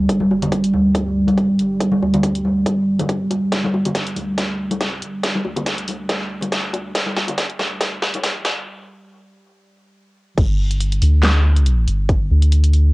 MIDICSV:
0, 0, Header, 1, 4, 480
1, 0, Start_track
1, 0, Tempo, 428571
1, 103, Time_signature, 4, 2, 24, 8
1, 14486, End_track
2, 0, Start_track
2, 0, Title_t, "Analog synth pad"
2, 0, Program_c, 0, 89
2, 0, Note_on_c, 0, 55, 81
2, 11675, Note_off_c, 0, 55, 0
2, 14486, End_track
3, 0, Start_track
3, 0, Title_t, "Sub bass"
3, 0, Program_c, 1, 38
3, 103, Note_on_c, 1, 31, 89
3, 806, Note_off_c, 1, 31, 0
3, 822, Note_on_c, 1, 38, 95
3, 1765, Note_off_c, 1, 38, 0
3, 1784, Note_on_c, 1, 31, 93
3, 2246, Note_off_c, 1, 31, 0
3, 2264, Note_on_c, 1, 38, 99
3, 2966, Note_off_c, 1, 38, 0
3, 2982, Note_on_c, 1, 31, 101
3, 3925, Note_off_c, 1, 31, 0
3, 3943, Note_on_c, 1, 31, 94
3, 4646, Note_off_c, 1, 31, 0
3, 4663, Note_on_c, 1, 38, 93
3, 5324, Note_off_c, 1, 38, 0
3, 5324, Note_on_c, 1, 37, 93
3, 5606, Note_off_c, 1, 37, 0
3, 5622, Note_on_c, 1, 31, 94
3, 6085, Note_off_c, 1, 31, 0
3, 6102, Note_on_c, 1, 38, 97
3, 6805, Note_off_c, 1, 38, 0
3, 6822, Note_on_c, 1, 38, 103
3, 7765, Note_off_c, 1, 38, 0
3, 7782, Note_on_c, 1, 31, 93
3, 8485, Note_off_c, 1, 31, 0
3, 8503, Note_on_c, 1, 38, 98
3, 9446, Note_off_c, 1, 38, 0
3, 9462, Note_on_c, 1, 31, 96
3, 9703, Note_off_c, 1, 31, 0
3, 11623, Note_on_c, 1, 31, 96
3, 12326, Note_off_c, 1, 31, 0
3, 12343, Note_on_c, 1, 38, 101
3, 13285, Note_off_c, 1, 38, 0
3, 13302, Note_on_c, 1, 31, 97
3, 13765, Note_off_c, 1, 31, 0
3, 13782, Note_on_c, 1, 38, 100
3, 14485, Note_off_c, 1, 38, 0
3, 14486, End_track
4, 0, Start_track
4, 0, Title_t, "Drums"
4, 103, Note_on_c, 9, 36, 93
4, 104, Note_on_c, 9, 42, 77
4, 215, Note_off_c, 9, 36, 0
4, 216, Note_off_c, 9, 42, 0
4, 227, Note_on_c, 9, 63, 92
4, 339, Note_off_c, 9, 63, 0
4, 347, Note_on_c, 9, 60, 60
4, 459, Note_off_c, 9, 60, 0
4, 473, Note_on_c, 9, 64, 96
4, 474, Note_on_c, 9, 42, 50
4, 483, Note_on_c, 9, 60, 51
4, 583, Note_on_c, 9, 36, 100
4, 584, Note_off_c, 9, 42, 0
4, 584, Note_on_c, 9, 42, 70
4, 585, Note_off_c, 9, 64, 0
4, 595, Note_off_c, 9, 60, 0
4, 695, Note_off_c, 9, 36, 0
4, 696, Note_off_c, 9, 42, 0
4, 716, Note_on_c, 9, 42, 50
4, 823, Note_on_c, 9, 63, 65
4, 828, Note_off_c, 9, 42, 0
4, 935, Note_off_c, 9, 63, 0
4, 1063, Note_on_c, 9, 36, 97
4, 1064, Note_on_c, 9, 42, 76
4, 1175, Note_off_c, 9, 36, 0
4, 1176, Note_off_c, 9, 42, 0
4, 1428, Note_on_c, 9, 63, 93
4, 1435, Note_on_c, 9, 42, 53
4, 1540, Note_off_c, 9, 63, 0
4, 1543, Note_off_c, 9, 42, 0
4, 1543, Note_on_c, 9, 36, 94
4, 1543, Note_on_c, 9, 42, 77
4, 1655, Note_off_c, 9, 36, 0
4, 1655, Note_off_c, 9, 42, 0
4, 1784, Note_on_c, 9, 42, 47
4, 1896, Note_off_c, 9, 42, 0
4, 2022, Note_on_c, 9, 36, 95
4, 2023, Note_on_c, 9, 42, 76
4, 2134, Note_off_c, 9, 36, 0
4, 2135, Note_off_c, 9, 42, 0
4, 2147, Note_on_c, 9, 63, 86
4, 2259, Note_off_c, 9, 63, 0
4, 2269, Note_on_c, 9, 60, 57
4, 2381, Note_off_c, 9, 60, 0
4, 2394, Note_on_c, 9, 42, 48
4, 2396, Note_on_c, 9, 60, 49
4, 2396, Note_on_c, 9, 64, 83
4, 2502, Note_on_c, 9, 36, 98
4, 2503, Note_off_c, 9, 42, 0
4, 2503, Note_on_c, 9, 42, 70
4, 2508, Note_off_c, 9, 60, 0
4, 2508, Note_off_c, 9, 64, 0
4, 2614, Note_off_c, 9, 36, 0
4, 2615, Note_off_c, 9, 42, 0
4, 2635, Note_on_c, 9, 42, 52
4, 2743, Note_on_c, 9, 63, 65
4, 2747, Note_off_c, 9, 42, 0
4, 2855, Note_off_c, 9, 63, 0
4, 2982, Note_on_c, 9, 36, 98
4, 2983, Note_on_c, 9, 42, 75
4, 3094, Note_off_c, 9, 36, 0
4, 3095, Note_off_c, 9, 42, 0
4, 3353, Note_on_c, 9, 63, 99
4, 3355, Note_on_c, 9, 42, 51
4, 3356, Note_on_c, 9, 64, 82
4, 3462, Note_on_c, 9, 36, 96
4, 3463, Note_off_c, 9, 42, 0
4, 3463, Note_on_c, 9, 42, 74
4, 3465, Note_off_c, 9, 63, 0
4, 3468, Note_off_c, 9, 64, 0
4, 3574, Note_off_c, 9, 36, 0
4, 3575, Note_off_c, 9, 42, 0
4, 3704, Note_on_c, 9, 42, 47
4, 3704, Note_on_c, 9, 60, 61
4, 3816, Note_off_c, 9, 42, 0
4, 3816, Note_off_c, 9, 60, 0
4, 3942, Note_on_c, 9, 36, 97
4, 3943, Note_on_c, 9, 38, 50
4, 3943, Note_on_c, 9, 42, 76
4, 4054, Note_off_c, 9, 36, 0
4, 4055, Note_off_c, 9, 38, 0
4, 4055, Note_off_c, 9, 42, 0
4, 4078, Note_on_c, 9, 63, 100
4, 4188, Note_on_c, 9, 60, 66
4, 4190, Note_off_c, 9, 63, 0
4, 4300, Note_off_c, 9, 60, 0
4, 4315, Note_on_c, 9, 42, 53
4, 4316, Note_on_c, 9, 64, 86
4, 4322, Note_on_c, 9, 60, 55
4, 4422, Note_on_c, 9, 36, 100
4, 4423, Note_off_c, 9, 42, 0
4, 4423, Note_on_c, 9, 38, 49
4, 4423, Note_on_c, 9, 42, 76
4, 4428, Note_off_c, 9, 64, 0
4, 4434, Note_off_c, 9, 60, 0
4, 4534, Note_off_c, 9, 36, 0
4, 4535, Note_off_c, 9, 38, 0
4, 4535, Note_off_c, 9, 42, 0
4, 4554, Note_on_c, 9, 42, 51
4, 4661, Note_on_c, 9, 63, 57
4, 4663, Note_on_c, 9, 46, 89
4, 4666, Note_off_c, 9, 42, 0
4, 4773, Note_off_c, 9, 63, 0
4, 4775, Note_off_c, 9, 46, 0
4, 4902, Note_on_c, 9, 36, 95
4, 4902, Note_on_c, 9, 38, 55
4, 4902, Note_on_c, 9, 42, 78
4, 5014, Note_off_c, 9, 36, 0
4, 5014, Note_off_c, 9, 38, 0
4, 5014, Note_off_c, 9, 42, 0
4, 5273, Note_on_c, 9, 63, 96
4, 5274, Note_on_c, 9, 42, 51
4, 5382, Note_off_c, 9, 42, 0
4, 5382, Note_on_c, 9, 36, 100
4, 5382, Note_on_c, 9, 38, 54
4, 5382, Note_on_c, 9, 42, 73
4, 5385, Note_off_c, 9, 63, 0
4, 5494, Note_off_c, 9, 36, 0
4, 5494, Note_off_c, 9, 38, 0
4, 5494, Note_off_c, 9, 42, 0
4, 5623, Note_on_c, 9, 42, 48
4, 5735, Note_off_c, 9, 42, 0
4, 5862, Note_on_c, 9, 36, 92
4, 5863, Note_on_c, 9, 38, 60
4, 5863, Note_on_c, 9, 42, 76
4, 5974, Note_off_c, 9, 36, 0
4, 5975, Note_off_c, 9, 38, 0
4, 5975, Note_off_c, 9, 42, 0
4, 5994, Note_on_c, 9, 63, 88
4, 6100, Note_on_c, 9, 60, 62
4, 6106, Note_off_c, 9, 63, 0
4, 6212, Note_off_c, 9, 60, 0
4, 6229, Note_on_c, 9, 64, 93
4, 6234, Note_on_c, 9, 42, 53
4, 6240, Note_on_c, 9, 60, 55
4, 6341, Note_off_c, 9, 64, 0
4, 6342, Note_on_c, 9, 36, 99
4, 6343, Note_off_c, 9, 42, 0
4, 6343, Note_on_c, 9, 38, 62
4, 6343, Note_on_c, 9, 42, 74
4, 6352, Note_off_c, 9, 60, 0
4, 6454, Note_off_c, 9, 36, 0
4, 6455, Note_off_c, 9, 38, 0
4, 6455, Note_off_c, 9, 42, 0
4, 6475, Note_on_c, 9, 42, 54
4, 6584, Note_on_c, 9, 46, 90
4, 6587, Note_off_c, 9, 42, 0
4, 6592, Note_on_c, 9, 63, 64
4, 6696, Note_off_c, 9, 46, 0
4, 6704, Note_off_c, 9, 63, 0
4, 6822, Note_on_c, 9, 36, 99
4, 6825, Note_on_c, 9, 38, 64
4, 6825, Note_on_c, 9, 42, 78
4, 6934, Note_off_c, 9, 36, 0
4, 6937, Note_off_c, 9, 38, 0
4, 6937, Note_off_c, 9, 42, 0
4, 7180, Note_on_c, 9, 64, 76
4, 7190, Note_on_c, 9, 63, 85
4, 7195, Note_on_c, 9, 42, 55
4, 7292, Note_off_c, 9, 64, 0
4, 7302, Note_off_c, 9, 63, 0
4, 7302, Note_on_c, 9, 36, 100
4, 7304, Note_off_c, 9, 42, 0
4, 7304, Note_on_c, 9, 38, 70
4, 7304, Note_on_c, 9, 42, 77
4, 7414, Note_off_c, 9, 36, 0
4, 7416, Note_off_c, 9, 38, 0
4, 7416, Note_off_c, 9, 42, 0
4, 7539, Note_on_c, 9, 60, 66
4, 7545, Note_on_c, 9, 42, 49
4, 7651, Note_off_c, 9, 60, 0
4, 7657, Note_off_c, 9, 42, 0
4, 7783, Note_on_c, 9, 36, 96
4, 7785, Note_on_c, 9, 38, 77
4, 7785, Note_on_c, 9, 42, 85
4, 7895, Note_off_c, 9, 36, 0
4, 7897, Note_off_c, 9, 38, 0
4, 7897, Note_off_c, 9, 42, 0
4, 7909, Note_on_c, 9, 63, 86
4, 8021, Note_off_c, 9, 63, 0
4, 8024, Note_on_c, 9, 38, 73
4, 8026, Note_on_c, 9, 60, 63
4, 8136, Note_off_c, 9, 38, 0
4, 8138, Note_off_c, 9, 60, 0
4, 8148, Note_on_c, 9, 60, 61
4, 8155, Note_on_c, 9, 42, 55
4, 8160, Note_on_c, 9, 64, 87
4, 8260, Note_off_c, 9, 60, 0
4, 8262, Note_on_c, 9, 36, 101
4, 8264, Note_off_c, 9, 42, 0
4, 8264, Note_on_c, 9, 38, 76
4, 8264, Note_on_c, 9, 42, 80
4, 8272, Note_off_c, 9, 64, 0
4, 8374, Note_off_c, 9, 36, 0
4, 8376, Note_off_c, 9, 38, 0
4, 8376, Note_off_c, 9, 42, 0
4, 8395, Note_on_c, 9, 42, 55
4, 8501, Note_on_c, 9, 63, 68
4, 8503, Note_on_c, 9, 38, 80
4, 8503, Note_on_c, 9, 46, 92
4, 8507, Note_off_c, 9, 42, 0
4, 8613, Note_off_c, 9, 63, 0
4, 8615, Note_off_c, 9, 38, 0
4, 8615, Note_off_c, 9, 46, 0
4, 8742, Note_on_c, 9, 36, 100
4, 8744, Note_on_c, 9, 38, 83
4, 8744, Note_on_c, 9, 42, 82
4, 8854, Note_off_c, 9, 36, 0
4, 8856, Note_off_c, 9, 38, 0
4, 8856, Note_off_c, 9, 42, 0
4, 8984, Note_on_c, 9, 38, 85
4, 9096, Note_off_c, 9, 38, 0
4, 9115, Note_on_c, 9, 42, 58
4, 9126, Note_on_c, 9, 63, 97
4, 9223, Note_on_c, 9, 36, 99
4, 9224, Note_off_c, 9, 42, 0
4, 9224, Note_on_c, 9, 38, 85
4, 9224, Note_on_c, 9, 42, 80
4, 9238, Note_off_c, 9, 63, 0
4, 9335, Note_off_c, 9, 36, 0
4, 9336, Note_off_c, 9, 38, 0
4, 9336, Note_off_c, 9, 42, 0
4, 9462, Note_on_c, 9, 38, 89
4, 9462, Note_on_c, 9, 42, 51
4, 9574, Note_off_c, 9, 38, 0
4, 9574, Note_off_c, 9, 42, 0
4, 11623, Note_on_c, 9, 36, 122
4, 11623, Note_on_c, 9, 42, 87
4, 11623, Note_on_c, 9, 49, 107
4, 11735, Note_off_c, 9, 36, 0
4, 11735, Note_off_c, 9, 42, 0
4, 11735, Note_off_c, 9, 49, 0
4, 11995, Note_on_c, 9, 42, 56
4, 12103, Note_off_c, 9, 42, 0
4, 12103, Note_on_c, 9, 42, 83
4, 12215, Note_off_c, 9, 42, 0
4, 12234, Note_on_c, 9, 42, 58
4, 12343, Note_on_c, 9, 46, 90
4, 12346, Note_off_c, 9, 42, 0
4, 12455, Note_off_c, 9, 46, 0
4, 12583, Note_on_c, 9, 38, 118
4, 12583, Note_on_c, 9, 39, 91
4, 12583, Note_on_c, 9, 42, 83
4, 12695, Note_off_c, 9, 38, 0
4, 12695, Note_off_c, 9, 39, 0
4, 12695, Note_off_c, 9, 42, 0
4, 12954, Note_on_c, 9, 42, 56
4, 13063, Note_off_c, 9, 42, 0
4, 13063, Note_on_c, 9, 42, 83
4, 13175, Note_off_c, 9, 42, 0
4, 13303, Note_on_c, 9, 42, 53
4, 13415, Note_off_c, 9, 42, 0
4, 13542, Note_on_c, 9, 36, 123
4, 13542, Note_on_c, 9, 42, 86
4, 13654, Note_off_c, 9, 36, 0
4, 13654, Note_off_c, 9, 42, 0
4, 13913, Note_on_c, 9, 42, 55
4, 14023, Note_off_c, 9, 42, 0
4, 14023, Note_on_c, 9, 42, 83
4, 14135, Note_off_c, 9, 42, 0
4, 14154, Note_on_c, 9, 42, 55
4, 14262, Note_on_c, 9, 46, 89
4, 14266, Note_off_c, 9, 42, 0
4, 14374, Note_off_c, 9, 46, 0
4, 14486, End_track
0, 0, End_of_file